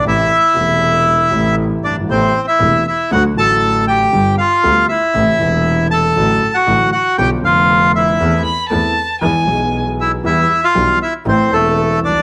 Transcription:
<<
  \new Staff \with { instrumentName = "Violin" } { \time 4/4 \key a \minor \tempo 4 = 118 r1 | r1 | r1 | r1 |
r8 b''8 a''4 gis''4~ gis''16 r8. | r1 | }
  \new Staff \with { instrumentName = "Bandoneon" } { \time 4/4 \key a \minor <e' e''>2. r8 <d' d''>8 | <c' c''>8. <e' e''>8. <e' e''>8 <fis' fis''>8 <a' a''>4 <g' g''>8~ | <g' g''>8 <f' f''>4 <e' e''>2 <a' a''>8~ | <a' a''>8. <fis' fis''>8. <fis' fis''>8 <g' g''>8 <f' f''>4 <e' e''>8~ |
<e' e''>8 r2. <e' e''>8 | <e' e''>8. <f' f''>8. <e' e''>8 <c' c''>8 <a a'>4 <d' d''>8 | }
  \new Staff \with { instrumentName = "Grand piano" } { \clef bass \time 4/4 \key a \minor << { <a,, a, c e a e'>8 r8 <e,, e, c e a e'>4. <a,, a, c e a e'>4. | <a,, a, c a b e'>8 r8 <e,, e, c a b e'>8 r8 <d, d fis a fis'>8 <a,, a, d fis a fis'>4. | <g,, g, d g b g'>8 r8 <d, d g b g'>8 r8 <a,, a, c e a e'>8 <e,, e, c e a e'>4. | <a,, a, d fis a fis'>8 r8 <a,, a, d fis a fis'>8 r8 <b,, b, d f b f'>8 <f,, f, d f b f'>4. |
<e, e a c' a'>8 r8 <e, e a c' a'>8 r8 <e, e gis b gis'>8 <b,, b, e gis b gis'>4. | <e, e g b g'>8 r8 <b,, b, e g b g'>8 r8 <a,, a, e a c' a'>8 <e,, e, e a c' a'>4. | } \\ { r2. r8 r32 fis,,32 g,,32 gis,,32 | r1 | r1 | r1 |
r1 | r2. r8 r32 b,,32 c,32 r32 | } >> }
  \new Staff \with { instrumentName = "Double bass" } { \clef bass \time 4/4 \key a \minor a,,8 r8 e,,4. a,,4 g,,8 | a,,8 r8 e,,8 r8 d,8 a,,4. | g,,8 r8 d,8 r8 a,,8 e,,4. | a,,8 r8 a,,8 r8 b,,8 f,,4. |
e,8 r8 e,8 r8 e,8 b,,4. | e,8 r8 b,,8 r8 a,,8 e,,4 c,8 | }
>>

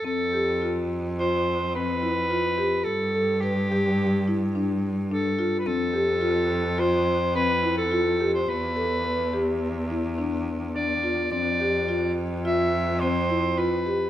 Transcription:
<<
  \new Staff \with { instrumentName = "Soprano saxophone" } { \time 5/4 \key f \lydian \tempo 4 = 106 a'4. r8 c''4 b'2 | a'4 g'2 r4 a'8.~ a'32 b'32 | a'2 c''4 b'8. a'4 c''16 | b'2 r2 d''4 |
d''4. r8 e''4 c''4 b'4 | }
  \new Staff \with { instrumentName = "Marimba" } { \time 5/4 \key f \lydian c'8 g'8 f'4 f'4 c'8 e'8 f'8 g'8~ | g'8 a'8 b'8 g'4 e'8 d'4 d'8 f'8 | c'8 g'8 f'4 f'4 c'8 e'8 f'8 g'8~ | g'8 a'8 b'8 g'4 e'8 d'4 d'8 f'8 |
c'8 g'8 f'4 f'4 c'8 e'8 f'8 g'8 | }
  \new Staff \with { instrumentName = "Cello" } { \clef bass \time 5/4 \key f \lydian f,1~ f,4 | g,1~ g,4 | f,1~ f,4 | e,1~ e,4 |
f,1~ f,4 | }
>>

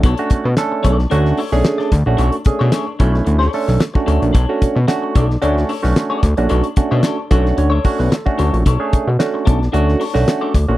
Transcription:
<<
  \new Staff \with { instrumentName = "Clean electric guitar" } { \time 4/4 \key b \dorian \tempo 4 = 111 <d' a' cis''>8 r4 <d' a' d''>16 r16 <d' a' cis''>16 r16 <d' a' cis''>16 r8 <d' a' d''>16 r8 | <d' a' cis''>16 r8 <d' a' cis''>16 <d' a' cis''>16 r16 <d' a' cis''>16 r8 <d' a' cis''>16 r4 <d' a' cis''>16 r16 | <d' a' cis''>8 r4 <d' a' d''>16 r16 <d' a' cis''>16 r16 <d' a' cis''>16 r8 <d' a' d''>16 r8 | <d' a' cis''>16 r8 <d' a' cis''>16 <d' a' cis''>16 r16 <d' a' cis''>16 r8 <d' a' cis''>16 r4 <d' a' cis''>16 r16 |
<d' a' cis''>8 r4 <d' a' d''>16 r16 <d' a' cis''>16 r16 <d' a' cis''>16 r8 <d' a' d''>16 r8 | }
  \new Staff \with { instrumentName = "Tine electric piano" } { \time 4/4 \key b \dorian << { r1 | r1 | r1 | r4. d''8 cis''8. b'16 a'4 |
r1 | } \\ { r16 <a cis' d' fis'>8 r16 <a cis' d' a'>8. r16 <a cis' d' fis'>8 r16 <a cis' d' gis'>8. r16 <a cis' d' fis'>16~ | <a cis' d' fis'>16 r16 <a cis' d' gis'>8. r16 <a cis' d' e'>8. r16 <a cis' d' a'>8 r16 <a cis' d' fis'>8. | r16 <a cis' d' fis'>8 r16 <a cis' d' fis'>8. r16 <a cis' d' fis'>8 r16 <a cis' d' fis'>8. r16 <a cis' d' fis'>16~ | <a cis' d' fis'>16 r16 <a cis' d' fis'>8. r16 <a cis' d' fis'>8. r16 <a cis' d' fis'>8 r16 <a cis' d' fis'>8. |
r16 <a cis' d' gis'>8 r16 <a cis' d' fis'>8. r16 <a cis' d' fis'>8 r16 <a cis' d' fis'>8. r16 <a cis' d' fis'>16 | } >> }
  \new Staff \with { instrumentName = "Analog synth bass" } { \clef bass \time 4/4 \key b \dorian b,,16 r16 b,16 b,16 r8 b,,8 d,8 r16 b,,16 r8 d,16 ais,,16 | b,,16 r16 b,16 b,16 r8 b,,8 d,8 r16 b,,16 r8 d,16 ais,,16 | b,,16 r16 b,16 b,16 r8 b,,8 d,8 r16 b,,16 r8 d,16 ais,,16 | b,,16 r16 b,16 b,16 r8 b,,8 d,8 r16 b,,16 r8 d,16 ais,,16 |
b,,16 r16 b,16 b,16 r8 b,,8 d,8 r16 b,,16 r8 d,16 ais,,16 | }
  \new DrumStaff \with { instrumentName = "Drums" } \drummode { \time 4/4 <hh bd>16 hh16 <hh bd>8 <hh sn>8 <hh bd>16 sn16 hh16 sn16 hho16 sn16 <hh sn>16 sn16 <hh bd sn>8 | hh16 hh16 <hh bd>8 <hh sn>8 <hh bd>16 sn16 hh16 sn16 hho16 sn16 <hh sn>16 bd16 hh16 hh16 | <hh bd>8 <hh bd>8 <hh sn>8 <hh bd>16 sn16 hh16 sn16 hho16 sn16 <hh sn>8 <hh bd sn>16 hh16 | hh16 hh16 <hh bd>8 <hh sn>8 <hh bd>16 sn16 hh8 <hho bd>16 sn16 <hh sn>16 bd16 hh16 hh16 |
<hh bd>8 <hh bd>8 <hh sn>8 <hh bd>16 sn16 hh16 sn16 hho16 sn16 <hh sn>8 <hh bd sn>8 | }
>>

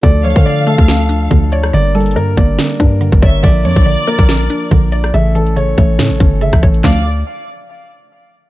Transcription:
<<
  \new Staff \with { instrumentName = "Violin section" } { \time 4/4 \key d \minor \tempo 4 = 141 r8 f''2~ f''8 r4 | r2. r8 e''8 | r8 d''2~ d''8 r4 | r1 |
d''8 r2. r8 | }
  \new Staff \with { instrumentName = "Grand piano" } { \time 4/4 \key d \minor d''8 cis''8 d''8 a'2 cis''8 | d''8 a'8 bes'8 d''2 cis''8 | d''8 cis''8 d''8 bes'2 d''8 | e''8 a'8 cis''8 cis''4. e''8 r8 |
f''8 r2. r8 | }
  \new Staff \with { instrumentName = "Pipe organ" } { \time 4/4 \key d \minor <a d' a'>1 | <bes d' bes'>1~ | <bes d' bes'>1 | <a cis' a'>1 |
<f a d' a'>8 r2. r8 | }
  \new Staff \with { instrumentName = "Pipe organ" } { \clef bass \time 4/4 \key d \minor f1 | g1 | f1 | e1 |
r1 | }
  \new Staff \with { instrumentName = "Synth pluck" } { \clef bass \time 4/4 \key d \minor d8 f8 d8 a8 d8 d'8 d8 d''8 | d8 g8 d8 bes8 d8 d'8 d8 d''8 | d8 f8 d8 bes8 d8 d'8 d8 d''8 | cis8 e8 cis8 a8 cis8 cis'8 cis8 cis''8 |
<d f a d'>8 r2. r8 | }
  \new Staff \with { instrumentName = "808-style bass" } { \clef bass \time 4/4 \key d \minor d,8. d4 d,4~ d,16 d,4 | g,,4 g,8 g,,8 r8 g,8. g,,16 g,,8 | bes,,8 f,16 bes,,8 r8 bes,,8. r8 bes,,4 | a,,4. a,,8 a,16 a,,16 g,,8. a,,16 a,,8 |
d,4 r2. | }
  \new DrumStaff \with { instrumentName = "Drums" } \drummode { \time 4/4 <hh bd>8 hh32 hh32 <hh bd>32 hh32 hh8 hh16 bd16 <hh sn>8 hh8 <hh bd>8 hh16 ss16 | hh8 hh32 hh32 hh32 hh32 hh8 <hh bd>8 <hh sn>8 <hh bd>8 hh16 bd16 <hh bd>8 | <hh bd>8 hh32 hh32 <hh bd>32 hh32 hh8 hh16 bd16 <hh sn>8 hh8 <hh bd>8 hh16 ss16 | hh8 hh16 hh16 hh8 <hh bd>8 <hh sn>8 <hh bd>8 hh16 <bd ss>16 <hh hho bd>16 hh16 |
<hc bd sn>4 r4 r4 r4 | }
>>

